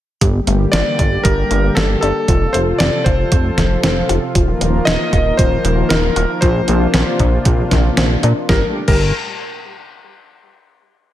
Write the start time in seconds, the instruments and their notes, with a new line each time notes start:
0.21 analog synth bass G1, analog synth pad D3 G3 A#3 G4, synth arpeggio sound G3, kick, closed hi-hat
0.47 analog synth bass G1, synth arpeggio sound A3, closed hi-hat
0.72 analog synth bass G1, synth arpeggio sound A#3, electric grand piano D5, snare, closed hi-hat
0.99 analog synth bass G1, synth arpeggio sound D4, kick, closed hi-hat
1.23 analog synth bass G1, synth arpeggio sound G3, electric grand piano A#4, kick, closed hi-hat
1.51 analog synth bass G1, synth arpeggio sound A3, closed hi-hat
1.75 analog synth bass G1, synth arpeggio sound A#3, electric grand piano A4, snare, closed hi-hat
2.01 analog synth bass G1, synth arpeggio sound D4, electric grand piano A4, closed hi-hat
2.28 analog synth bass F1, analog synth pad C3 F3 F4 A4, synth arpeggio sound F3, kick, closed hi-hat
2.53 analog synth bass F1, synth arpeggio sound A3, electric grand piano C5, closed hi-hat
2.78 analog synth bass F1, synth arpeggio sound C4, electric grand piano D5, snare, closed hi-hat
3.04 analog synth bass F1, synth arpeggio sound F4, electric grand piano C5, kick, closed hi-hat
3.32 analog synth bass F1, synth arpeggio sound F3, kick, closed hi-hat
3.58 analog synth bass F1, synth arpeggio sound A3, kick, snare, closed hi-hat
3.83 analog synth bass F1, synth arpeggio sound C4, snare, closed hi-hat
4.09 analog synth bass F1, synth arpeggio sound F4, closed hi-hat
4.35 analog synth bass D#1, analog synth pad D#3 A#3 A#4, synth arpeggio sound F3, kick, closed hi-hat
4.61 analog synth bass D#1, synth arpeggio sound A#3, closed hi-hat
4.85 analog synth bass D#1, synth arpeggio sound D#4, electric grand piano D#5, snare, closed hi-hat
5.13 analog synth bass D#1, synth arpeggio sound F4, kick, closed hi-hat
5.37 analog synth bass D#1, synth arpeggio sound F3, electric grand piano C5, kick, closed hi-hat
5.65 analog synth bass D#1, synth arpeggio sound A#3, closed hi-hat
5.89 analog synth bass D#1, synth arpeggio sound D#4, electric grand piano A#4, snare, closed hi-hat
6.16 analog synth bass D#1, synth arpeggio sound F4, closed hi-hat
6.41 analog synth bass A#1, analog synth pad C3 D4 F4, synth arpeggio sound F3, electric grand piano C5, kick, closed hi-hat
6.68 analog synth bass A#1, synth arpeggio sound A#3, closed hi-hat
6.94 analog synth bass A#1, synth arpeggio sound C4, snare, closed hi-hat
7.20 analog synth bass A#1, synth arpeggio sound D4, kick, closed hi-hat
7.45 analog synth bass A#1, synth arpeggio sound F3, kick, closed hi-hat
7.71 analog synth bass A#1, synth arpeggio sound A#3, kick, snare, closed hi-hat
7.97 analog synth bass A#1, synth arpeggio sound C4, snare, closed hi-hat
8.23 analog synth bass A#2, synth arpeggio sound D4, closed hi-hat
8.49 analog synth bass G1, analog synth pad A#2 G3 A3 D4 G4, synth arpeggio sound G3, electric grand piano A#4, kick, snare
8.88 analog synth bass G1, synth arpeggio sound G3, electric grand piano A#4, kick, crash